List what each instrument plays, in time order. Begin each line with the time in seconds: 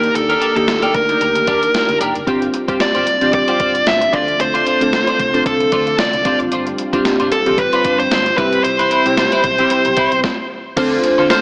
Already playing: string machine D#3 A#3 G4 D5, synth keys A#3 D4 D#4 G4, lead electric guitar A#4
0.03 muted clean electric guitar stroke, closed hi-hat
0.15 fretless electric bass D#2, lead electric guitar A4, muted clean electric guitar stroke, closed hi-hat
0.29 clean electric guitar D4 G4 A#4, closed hi-hat
0.41 clean electric guitar D4 G4 A#4, closed hi-hat
0.56 fretless electric bass D#2, synth keys A#3 D4 D#4 G4, lead electric guitar A4, muted clean electric guitar stroke, closed hi-hat
0.68 muted clean electric guitar stroke, snare, closed hi-hat
0.82 clean electric guitar D4 G4 A#4, closed hi-hat
0.94 fretless electric bass D2, lead electric guitar A#4, kick, closed hi-hat
1.09 synth keys A#3 D4 D#4 G4, muted clean electric guitar stroke, closed hi-hat
1.21 fretless electric bass D2, muted clean electric guitar stroke, closed hi-hat
1.35 muted clean electric guitar stroke, closed hi-hat
1.47 fretless electric bass D#2, clean electric guitar D4 G4 A#4, kick, closed hi-hat
1.62 muted clean electric guitar stroke, closed hi-hat
1.74 muted clean electric guitar stroke, snare, closed hi-hat
1.89 fretless electric bass D2, muted clean electric guitar stroke, closed hi-hat
2.01 fretless electric bass F1, clean electric guitar D4 G4 A#4, closed hi-hat
2.15 fretless electric bass F#1, muted clean electric guitar stroke, closed hi-hat
2.27 fretless electric bass G1, string machine G3 C4 F4, synth keys C4 D4 F4 G4, clean electric guitar F4 G4 C5, kick, closed hi-hat
2.42 muted clean electric guitar stroke, closed hi-hat
2.54 muted clean electric guitar stroke, closed hi-hat
2.68 fretless electric bass G2, synth keys C4 D4 F4 G4, clean electric guitar F4 G4 C5, kick, closed hi-hat
2.80 lead electric guitar D5, muted clean electric guitar stroke, snare, closed hi-hat
2.95 fretless electric bass G1, clean electric guitar F4 G4 C5, closed hi-hat
3.07 muted clean electric guitar stroke, closed hi-hat
3.21 fretless electric bass A1, synth keys C4 D4 F4 G4, muted clean electric guitar stroke, closed hi-hat
3.33 lead electric guitar D5, muted clean electric guitar stroke, kick, closed hi-hat
3.48 clean electric guitar F4 G4 C5, closed hi-hat
3.60 fretless electric bass G1, clean electric guitar F4 G4 C5, kick, closed hi-hat
3.75 muted clean electric guitar stroke, closed hi-hat
3.87 fretless electric bass G1, lead electric guitar E5, snare, closed hi-hat
4.01 muted clean electric guitar stroke, closed hi-hat
4.13 fretless electric bass D2, string machine D3 A3, synth keys C4 D4 F4 A4, clean electric guitar D4 F4 C5, lead electric guitar D5, kick, closed hi-hat
4.28 muted clean electric guitar stroke, closed hi-hat
4.39 fretless electric bass D2, lead electric guitar C5, muted clean electric guitar stroke, closed hi-hat
4.54 clean electric guitar D4 F4 C5, closed hi-hat
4.66 clean electric guitar D4 F4 C5, closed hi-hat
4.81 fretless electric bass D2, synth keys C4 D4 F4 A4, muted clean electric guitar stroke, closed hi-hat
4.93 muted clean electric guitar stroke, snare, closed hi-hat
5.07 clean electric guitar D4 F4 C5, closed hi-hat
5.19 fretless electric bass C2, muted clean electric guitar stroke, kick, closed hi-hat
5.33 synth keys C4 D4 F4 A4, muted clean electric guitar stroke, closed hi-hat
5.46 fretless electric bass C2, lead electric guitar A4, muted clean electric guitar stroke, kick, closed hi-hat
5.60 muted clean electric guitar stroke, closed hi-hat
5.72 fretless electric bass D2, clean electric guitar D4 F4 C5, kick, closed hi-hat
5.87 muted clean electric guitar stroke, closed hi-hat
5.98 lead electric guitar D5, muted clean electric guitar stroke, snare, closed hi-hat
6.13 fretless electric bass C2, muted clean electric guitar stroke, closed hi-hat
6.25 fretless electric bass G1, string machine G3, synth keys C4 D4 F4 G4, clean electric guitar D4 F4 C5, kick, closed hi-hat
6.40 fretless electric bass F#1, muted clean electric guitar stroke, closed hi-hat
6.52 fretless electric bass G1, clean electric guitar D4 F4 C5, closed hi-hat
6.67 muted clean electric guitar stroke, closed hi-hat
6.78 muted clean electric guitar stroke, closed hi-hat
6.93 fretless electric bass G2, synth keys C4 D4 F4 G4, clean electric guitar D4 F4 C5, kick, closed hi-hat
7.05 muted clean electric guitar stroke, snare, closed hi-hat
7.20 fretless electric bass G1, clean electric guitar D4 F4 C5, closed hi-hat
7.32 lead electric guitar A4, muted clean electric guitar stroke, closed hi-hat
7.46 fretless electric bass A1, synth keys C4 D4 F4 G4, muted clean electric guitar stroke, closed hi-hat
7.58 lead electric guitar B4, muted clean electric guitar stroke, kick, closed hi-hat
7.73 clean electric guitar D4 F4 C5, closed hi-hat
7.84 fretless electric bass G1, clean electric guitar D4 F4 C5, kick, closed hi-hat
7.99 lead electric guitar C5, muted clean electric guitar stroke, closed hi-hat
8.11 fretless electric bass G1, snare, closed hi-hat
8.26 muted clean electric guitar stroke, closed hi-hat
8.37 fretless electric bass C2, string machine C3 C4 E4, synth keys G3 C4 E4 G4, clean electric guitar C4 E4 B4, lead electric guitar B4, kick, closed hi-hat
8.53 muted clean electric guitar stroke, closed hi-hat
8.64 fretless electric bass C2, lead electric guitar C5, muted clean electric guitar stroke, closed hi-hat
8.79 clean electric guitar C4 E4 B4, closed hi-hat
8.91 clean electric guitar C4 E4 B4, closed hi-hat
9.06 fretless electric bass C2, synth keys G3 C4 E4 G4, muted clean electric guitar stroke, closed hi-hat
9.17 muted clean electric guitar stroke, snare, closed hi-hat
9.32 clean electric guitar C4 E4 B4, closed hi-hat
9.44 fretless electric bass B1, kick, closed hi-hat
9.58 synth keys G3 C4 E4 G4, muted clean electric guitar stroke, closed hi-hat
9.70 muted clean electric guitar stroke, closed hi-hat
9.85 fretless electric bass B1, muted clean electric guitar stroke, closed hi-hat
9.97 fretless electric bass C2, clean electric guitar C4 E4 B4, kick, closed hi-hat
10.12 fretless electric bass B1, muted clean electric guitar stroke, closed hi-hat
10.24 kick, snare
10.76 fretless electric bass D2, string machine D3 A3 C4 F4, synth keys C4 D4 F4 A4 C5, clean electric guitar F4 A4 C5, kick, closed hi-hat, crash
10.92 muted clean electric guitar stroke
11.04 muted clean electric guitar stroke, closed hi-hat
11.18 fretless electric bass D3, clean electric guitar F4 A4 C5
11.30 clean electric guitar F4 A4 C5, lead electric guitar C5, snare, closed hi-hat, tambourine